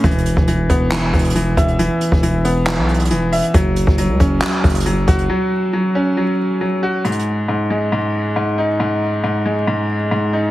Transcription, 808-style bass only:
\new Staff \with { instrumentName = "808-style bass" } { \clef bass \time 4/4 \key gis \minor \tempo 4 = 137 e,,8. e,,8. e,,4 e,,4 e,,8~ | e,,16 r8 e,,4. b,,8. e,,8. r16 | fis,,8. fis,,8 cis,16 fis,,8 r8 fis,,4 fis,,8 | r1 |
r1 | r1 | }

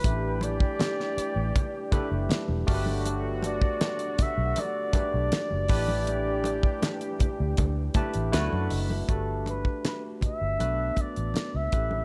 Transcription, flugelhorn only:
\new Staff \with { instrumentName = "Flugelhorn" } { \time 4/4 \key g \lydian \tempo 4 = 80 b'8 d''2. r8 | r8 d''4 e''8 d''2~ | d''2. r4 | a'8 b'8 b'8 e''4 d''8. e''8. | }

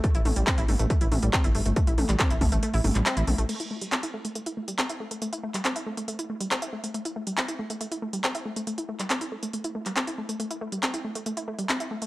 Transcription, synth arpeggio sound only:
\new Staff \with { instrumentName = "Synth arpeggio sound" } { \time 4/4 \key a \minor \tempo 4 = 139 a16 e'16 a16 g16 c'16 e'16 a16 a16 a16 e'16 a16 g16 c'16 e'16 a16 a16 | a16 e'16 a16 g16 c'16 e'16 a16 a16 a16 e'16 a16 g16 c'16 e'16 a16 a16 | a16 e'16 a16 g16 c'16 e'16 a16 a16 a16 e'16 a16 g16 c'16 e'16 a16 a16 | a16 e'16 a16 g16 c'16 e'16 a16 a16 a16 e'16 a16 g16 c'16 e'16 a16 a16 |
a16 e'16 a16 g16 c'16 e'16 a16 a16 a16 e'16 a16 g16 c'16 e'16 a16 a16 | a16 e'16 a16 g16 c'16 e'16 a16 a16 a16 e'16 a16 g16 c'16 e'16 a16 a16 | a16 e'16 a16 g16 c'16 e'16 a16 a16 a16 e'16 a16 g16 c'16 e'16 a16 a16 | }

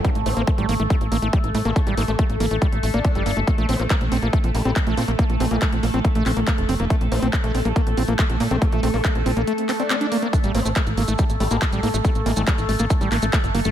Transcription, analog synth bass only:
\new Staff \with { instrumentName = "Analog synth bass" } { \clef bass \time 4/4 \key bes \lydian \tempo 4 = 140 r16 a,,16 a,,16 a,,16 r16 a,,16 a,,16 a,,16 r16 a,,16 a,,16 a,,16 r16 a,,16 a,16 a,,16 | r16 a,,16 a,,16 a,,16 r16 a,,16 a,,16 a,,16 r16 a,,16 a,,16 a,,16 r16 g,,16 g,,16 g,,16 | r16 bes,,16 bes,,16 bes,,16 r16 bes,,16 bes,,16 bes,,16 r16 bes,,16 bes,,16 bes,,16 r16 bes,,16 bes,16 bes,,16 | r16 bes,,16 bes,,16 bes,,16 r16 bes,,16 bes,,16 bes,,16 r16 bes,,16 bes,,16 bes,,16 r16 f,,16 f,,16 f,,16 |
r16 bes,,16 bes,,16 bes,,16 r16 bes,,16 bes,,16 bes,,16 r16 bes,,16 bes,,16 bes,,16 r16 bes,,16 bes,16 bes,,16 | r16 bes,,16 bes,,16 bes,,16 r16 bes,,16 bes,,16 bes,,16 r2 | r16 a,,16 a,,16 a,,16 r16 a,,16 a,,16 a,,16 r16 a,,16 a,,16 a,,16 r16 a,,16 a,16 a,,16 | r16 a,,16 a,,16 a,,16 r16 a,,16 a,,16 a,,16 r16 a,,16 a,,16 a,,16 r16 g,,16 g,,16 g,,16 | }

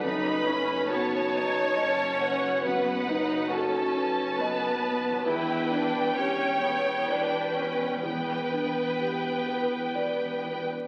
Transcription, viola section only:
\new Staff \with { instrumentName = "Viola section" } { \time 3/4 \key e \dorian \tempo 4 = 68 dis'8 cis'8 b8 dis'8 cis'4 | b8 dis'8 cis'4 b4 | e'8 d'8 cis'8 b8 d'8 cis'8 | b2. | }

